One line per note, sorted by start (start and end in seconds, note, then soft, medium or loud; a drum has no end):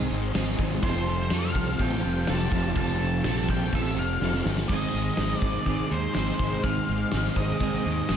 0.00 0.35 G#2 loud
0.00 0.12 D#3 medium
0.00 0.32 G#3 medium
0.00 0.12 C4 loud
0.00 0.79 G#4 medium
0.00 4.66 C5 medium
0.00 0.80 D#5 medium
0.00 0.79 C6 medium
0.08 0.33 G#1 medium
0.08 0.36 G#3 medium
0.08 0.35 D#4 medium
0.08 0.36 G#4 medium
0.12 0.35 D#3 medium
0.12 0.35 C4 medium
0.33 0.57 G#1 medium
0.33 0.82 G#2 medium
0.33 0.61 D#3 medium
0.33 0.81 G#3 medium
0.33 0.61 C4 medium
0.33 0.58 D#4 medium
0.33 0.56 G#4 medium
0.33 snare loud
0.33 crash medium
0.38 0.58 G#3 medium
0.57 0.81 G#1 medium
0.57 0.82 G#3 medium
0.57 0.83 C4 medium
0.57 0.82 D#4 medium
0.57 0.81 G#4 medium
0.57 kick medium
0.62 0.83 D#3 medium
0.82 1.27 F1 loud
0.82 1.31 F2 medium
0.82 1.09 C3 loud
0.82 1.29 F3 loud
0.82 1.08 F3 loud
0.82 1.09 C4 medium
0.82 1.08 F4 loud
0.82 4.66 G4 medium
0.82 1.06 A4 loud
0.82 1.33 C5 medium
0.82 4.66 F5 medium
0.82 4.66 A5 medium
0.82 kick loud
0.82 crash medium
1.06 1.33 F3 medium
1.06 1.31 C4 medium
1.06 1.32 F4 medium
1.06 1.33 A4 medium
1.11 1.32 C3 medium
1.30 1.79 F2 medium
1.30 1.54 F2 loud
1.30 1.57 C3 medium
1.30 1.77 F3 medium
1.30 1.56 F3 medium
1.30 1.57 C4 medium
1.30 1.55 F4 medium
1.30 1.54 A4 medium
1.30 1.82 F5 loud
1.30 snare loud
1.30 crash medium
1.54 1.77 C2 medium
1.54 1.79 C3 medium
1.54 1.81 F3 medium
1.54 1.79 C4 medium
1.54 1.79 F4 medium
1.54 1.80 A4 medium
1.54 kick medium
1.78 2.02 A1 medium
1.78 2.27 F2 medium
1.78 2.06 C3 loud
1.78 2.25 F3 medium
1.78 2.03 F3 loud
1.78 2.05 C4 medium
1.78 2.03 F4 loud
1.78 2.02 A4 loud
1.78 2.30 G5 loud
1.78 kick medium
1.78 crash medium
2.03 2.27 F1 medium
2.03 2.28 F3 medium
2.03 2.27 C4 medium
2.03 2.27 F4 medium
2.03 2.28 A4 medium
2.07 2.28 C3 medium
2.26 2.51 F1 medium
2.26 2.76 F2 medium
2.26 2.54 C3 medium
2.26 2.73 F3 medium
2.26 2.52 F3 medium
2.26 2.53 C4 medium
2.26 2.51 F4 medium
2.26 2.49 A4 medium
2.26 snare loud
2.26 crash medium
2.31 2.77 A5 loud
2.50 2.74 F1 loud
2.50 2.78 F3 medium
2.50 2.75 C4 medium
2.50 2.76 F4 medium
2.50 2.77 A4 medium
2.50 kick medium
2.55 2.77 C3 medium
2.75 3.21 F1 loud
2.75 3.23 F2 medium
2.75 3.02 C3 loud
2.75 3.23 F3 medium
2.75 3.02 C4 medium
2.75 3.00 F4 loud
2.75 2.98 A4 loud
2.75 3.50 A5 loud
2.75 kick loud
2.75 crash medium
2.79 3.00 F3 loud
2.99 3.25 C3 medium
2.99 3.26 F3 medium
2.99 3.25 C4 medium
2.99 3.26 F4 medium
2.99 3.27 A4 medium
3.24 3.69 A#1 loud
3.24 3.72 F2 medium
3.24 3.49 C3 medium
3.24 3.70 F3 medium
3.24 3.47 F3 medium
3.24 3.50 C4 medium
3.24 3.48 F4 medium
3.24 3.46 A4 medium
3.24 snare loud
3.24 crash medium
3.47 3.74 C3 medium
3.47 3.74 F3 medium
3.47 3.72 C4 medium
3.47 3.73 F4 medium
3.47 3.74 A4 medium
3.47 3.75 G5 medium
3.47 kick medium
3.72 3.95 A1 loud
3.72 4.20 F2 loud
3.72 3.98 C3 loud
3.72 4.19 F3 loud
3.72 3.96 F3 loud
3.72 3.99 C4 loud
3.72 3.97 F4 loud
3.72 3.95 A4 loud
3.72 3.98 E5 medium
3.72 kick medium
3.72 crash medium
3.96 4.19 F1 medium
3.96 4.21 C3 medium
3.96 4.22 F3 medium
3.96 4.21 C4 medium
3.96 4.22 F4 medium
3.96 4.23 A4 medium
3.96 4.43 F5 medium
4.21 4.44 F1 medium
4.21 4.68 F2 medium
4.21 4.45 C3 medium
4.21 4.68 F3 medium
4.21 4.43 F3 medium
4.21 4.47 C4 medium
4.21 4.46 F4 medium
4.21 4.44 A4 medium
4.21 snare medium
4.33 snare medium
4.44 4.68 G1 medium
4.44 4.69 C3 medium
4.44 4.68 F3 medium
4.44 4.69 F4 medium
4.44 4.68 A4 medium
4.44 snare medium
4.49 4.70 C4 medium
4.57 snare medium
4.68 4.84 G#1 medium
4.68 5.66 G#2 medium
4.68 5.18 G#2 medium
4.68 5.18 D#3 medium
4.68 4.95 D#3 loud
4.68 4.97 G#3 loud
4.68 4.94 G#3 loud
4.68 4.96 C4 medium
4.68 4.95 D#4 loud
4.68 8.17 G#4 medium
4.68 8.17 C5 medium
4.68 5.36 D#5 medium
4.68 8.17 D#5 medium
4.68 6.62 C6 medium
4.68 kick loud
4.68 crash loud
4.73 4.94 G#4 loud
4.94 5.09 G#1 medium
4.94 5.18 D#3 medium
4.94 5.20 G#3 medium
4.94 5.17 G#3 medium
4.94 5.18 C4 medium
4.94 5.19 D#4 medium
4.94 5.20 G#4 medium
5.17 5.33 G#1 medium
5.17 6.15 G#2 medium
5.17 5.92 D#3 loud
5.17 5.45 G#3 medium
5.17 5.90 G#3 medium
5.17 5.43 C4 medium
5.17 5.43 D#4 medium
5.17 5.42 G#4 medium
5.17 snare loud
5.17 open hi-hat medium
5.36 5.67 D5 medium
5.42 5.57 G#1 medium
5.42 5.66 G#3 medium
5.42 5.68 C4 medium
5.42 5.68 D#4 medium
5.42 5.68 G#4 medium
5.42 kick medium
5.66 5.82 G#1 medium
5.66 6.15 G#2 medium
5.66 6.15 D#3 medium
5.66 5.92 G#3 medium
5.66 5.92 C4 loud
5.66 5.90 D#4 loud
5.66 5.89 G#4 loud
5.66 5.92 D5 medium
5.66 kick medium
5.66 open hi-hat medium
5.90 6.06 D#2 medium
5.90 6.16 D#3 medium
5.90 6.17 G#3 medium
5.90 6.13 G#3 medium
5.90 6.15 C4 medium
5.90 6.15 D#4 medium
5.90 6.16 G#4 medium
5.90 6.13 C5 medium
6.14 6.30 G#1 medium
6.14 6.63 G#2 medium
6.14 6.41 D#3 medium
6.14 6.62 G#3 medium
6.14 6.38 G#3 medium
6.14 6.64 C4 medium
6.14 6.64 D#4 medium
6.14 6.65 G#4 medium
6.14 6.65 C5 medium
6.14 snare loud
6.14 open hi-hat medium
6.39 6.55 G#1 medium
6.39 6.64 D#3 medium
6.39 6.65 G#3 medium
6.39 kick medium
6.62 6.79 G#1 loud
6.62 7.11 G#2 medium
6.62 7.12 D#3 medium
6.62 6.91 D#3 loud
6.62 6.89 G#3 medium
6.62 6.89 C4 medium
6.62 6.87 D#4 medium
6.62 6.86 G#4 medium
6.62 7.37 F5 loud
6.62 8.17 D6 medium
6.62 kick loud
6.62 open hi-hat medium
6.66 6.89 G#3 loud
6.87 7.04 G#1 medium
6.87 7.14 G#3 medium
6.87 7.10 G#3 medium
6.87 7.12 C4 medium
6.87 7.13 D#4 medium
6.87 7.14 G#4 medium
6.92 7.13 D#3 medium
7.11 7.28 G#1 medium
7.11 8.09 G#2 medium
7.11 7.87 D#3 medium
7.11 7.38 G#3 medium
7.11 7.84 G#3 loud
7.11 7.38 C4 medium
7.11 7.36 D#4 medium
7.11 snare loud
7.11 open hi-hat medium
7.15 7.35 G#4 medium
7.36 7.51 G#1 medium
7.36 7.60 G#3 medium
7.36 7.61 C4 medium
7.36 7.61 D#4 medium
7.36 7.62 G#4 medium
7.36 8.17 D#5 medium
7.36 kick medium
7.60 7.76 G#1 medium
7.60 8.09 G#2 medium
7.60 8.09 D#3 medium
7.60 7.87 G#3 loud
7.60 7.87 C4 loud
7.60 7.85 D#4 loud
7.60 7.84 G#4 loud
7.60 kick medium
7.60 open hi-hat medium
7.85 8.00 D#2 medium
7.85 8.10 D#3 medium
7.85 8.11 G#3 medium
7.85 8.08 G#3 medium
7.85 8.10 C4 medium
7.85 8.10 D#4 medium
7.85 8.11 G#4 medium
8.09 8.17 G#1 medium
8.09 8.17 G#2 medium
8.09 8.17 D#3 medium
8.09 8.17 G#3 medium
8.09 8.17 C4 medium
8.09 8.17 D#4 medium
8.09 8.17 G#4 medium
8.09 snare loud
8.09 open hi-hat medium